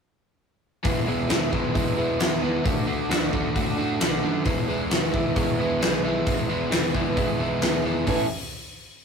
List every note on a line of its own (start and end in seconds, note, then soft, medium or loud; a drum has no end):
0.83 1.04 E1 medium
0.83 1.97 E2 medium
0.83 1.05 E3 loud
0.83 1.06 G#3 loud
0.83 1.07 B3 loud
0.83 1.07 E4 loud
0.83 kick loud
0.83 open hi-hat medium
1.06 1.27 E1 medium
1.06 1.27 E3 medium
1.06 1.28 G#3 medium
1.06 1.29 B3 loud
1.06 1.29 E4 medium
1.29 1.49 E1 medium
1.29 1.50 E3 medium
1.29 1.51 G#3 medium
1.29 1.52 B3 medium
1.29 1.52 E4 medium
1.29 snare loud
1.29 open hi-hat medium
1.51 1.71 E1 medium
1.51 1.73 E3 medium
1.51 2.64 F#3 medium
1.51 1.73 G#3 medium
1.51 1.74 B3 medium
1.51 1.74 E4 medium
1.51 kick medium
1.74 1.94 E1 medium
1.74 1.95 E3 medium
1.74 1.96 G#3 medium
1.74 1.97 B3 medium
1.74 1.97 E4 medium
1.74 kick loud
1.74 open hi-hat medium
1.96 2.17 E1 medium
1.96 2.18 E3 medium
1.96 2.18 G#3 medium
1.96 2.19 B3 medium
1.96 2.20 E4 medium
2.19 2.59 E2 medium
2.19 2.41 E3 medium
2.19 2.42 G#3 medium
2.19 2.42 B3 medium
2.19 2.42 E4 medium
2.19 2.65 F#4 medium
2.19 snare loud
2.19 open hi-hat medium
2.42 2.63 E3 medium
2.42 2.64 G#3 medium
2.42 2.64 B3 medium
2.42 2.64 E4 medium
2.64 2.85 D2 medium
2.64 2.84 D3 loud
2.64 2.85 A3 loud
2.64 2.85 D4 loud
2.64 2.86 F#4 loud
2.64 kick loud
2.64 open hi-hat medium
2.85 3.07 D2 medium
2.85 3.08 D3 medium
2.85 3.09 A3 medium
2.85 3.09 D4 loud
2.85 3.10 F#4 loud
3.09 3.30 D2 medium
3.09 3.30 D3 medium
3.09 3.31 A3 loud
3.09 3.32 D4 loud
3.09 3.33 F#4 medium
3.09 snare loud
3.09 open hi-hat medium
3.32 3.52 D2 medium
3.32 3.53 D3 medium
3.32 3.54 A3 medium
3.32 3.54 D4 medium
3.32 3.55 F#4 medium
3.32 kick medium
3.54 3.75 D2 medium
3.54 3.76 D3 medium
3.54 3.76 A3 medium
3.54 3.77 D4 medium
3.54 3.77 F#4 medium
3.54 kick loud
3.54 open hi-hat soft
3.77 3.97 A2 medium
3.77 3.98 D3 medium
3.77 3.99 A3 medium
3.77 4.00 D4 medium
3.77 4.00 F#4 medium
3.99 4.21 B1 medium
3.99 4.21 D3 medium
3.99 4.22 A3 medium
3.99 4.22 D4 medium
3.99 4.23 F#4 medium
3.99 snare loud
3.99 open hi-hat medium
4.22 4.43 F#2 medium
4.22 4.44 D3 medium
4.22 4.44 A3 medium
4.22 4.45 D4 medium
4.22 4.45 F#4 medium
4.44 4.65 E1 loud
4.44 5.58 E2 medium
4.44 4.67 E3 loud
4.44 4.68 G#3 loud
4.44 4.69 B3 loud
4.44 4.69 E4 loud
4.44 kick loud
4.44 open hi-hat medium
4.67 4.89 E1 medium
4.67 4.90 E3 medium
4.67 4.91 G#3 loud
4.67 4.92 B3 loud
4.67 4.92 E4 loud
4.90 5.11 E1 loud
4.90 5.13 E3 medium
4.90 5.13 G#3 loud
4.90 5.14 B3 loud
4.90 5.15 E4 loud
4.90 snare loud
4.90 open hi-hat medium
5.13 5.33 E1 medium
5.13 5.35 E3 medium
5.13 5.35 G#3 medium
5.13 5.36 B3 medium
5.13 5.37 E4 loud
5.13 kick medium
5.35 5.56 E1 medium
5.35 5.58 E3 medium
5.35 5.58 G#3 medium
5.35 5.59 B3 medium
5.35 5.61 E4 loud
5.35 kick loud
5.35 open hi-hat medium
5.58 5.78 E1 medium
5.58 5.80 E3 medium
5.58 5.80 G#3 medium
5.58 5.81 B3 medium
5.58 5.82 E4 medium
5.80 6.20 B1 medium
5.80 6.03 E3 medium
5.80 6.02 G#3 medium
5.80 6.04 B3 medium
5.80 6.04 E4 medium
5.80 6.95 G#4 medium
5.80 snare loud
5.80 open hi-hat medium
6.03 6.25 E3 medium
6.03 6.25 G#3 medium
6.03 6.26 B3 medium
6.03 6.26 E4 medium
6.26 6.46 E1 loud
6.26 7.40 E2 medium
6.26 6.47 E3 medium
6.26 6.48 G#3 loud
6.26 6.48 B3 medium
6.26 6.49 E4 loud
6.26 kick loud
6.26 open hi-hat medium
6.48 6.69 E1 medium
6.48 6.69 E3 medium
6.48 6.70 G#3 loud
6.48 6.70 B3 medium
6.48 6.71 E4 loud
6.70 6.91 E1 medium
6.70 6.92 E3 medium
6.70 6.93 G#3 medium
6.70 6.94 B3 loud
6.70 6.94 E4 loud
6.70 snare loud
6.70 open hi-hat medium
6.93 7.14 E1 medium
6.93 7.14 E3 medium
6.93 7.15 G#3 medium
6.93 7.16 B3 medium
6.93 7.17 E4 medium
6.93 kick medium
7.16 7.36 E1 medium
7.16 7.37 E3 medium
7.16 7.38 G#3 medium
7.16 7.39 B3 medium
7.16 7.39 E4 medium
7.16 kick loud
7.16 open hi-hat soft
7.38 7.59 B1 loud
7.38 7.59 E3 medium
7.38 7.60 G#3 medium
7.38 7.60 B3 medium
7.38 7.61 E4 medium
7.61 7.81 D2 medium
7.61 7.83 E3 medium
7.61 7.83 G#3 medium
7.61 7.84 B3 medium
7.61 7.85 E4 medium
7.61 8.08 G#4 medium
7.61 snare loud
7.61 open hi-hat medium
7.84 8.04 E1 medium
7.84 8.05 E3 medium
7.84 8.06 G#3 medium
7.84 8.06 B3 medium
7.84 8.06 E4 medium
8.06 8.29 A1 loud
8.06 8.25 A2 medium
8.06 8.25 E3 loud
8.06 8.25 A3 loud
8.06 8.26 B3 loud
8.06 8.26 C#4 medium
8.06 8.25 E4 loud
8.06 8.26 A4 loud
8.06 kick loud
8.06 open hi-hat medium